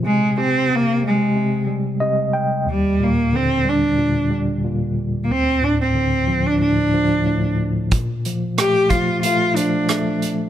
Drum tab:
HH |--------|--------|--------|xxxxxxxx|
SD |--------|--------|--------|--r---r-|
BD |--------|--------|--------|o--o----|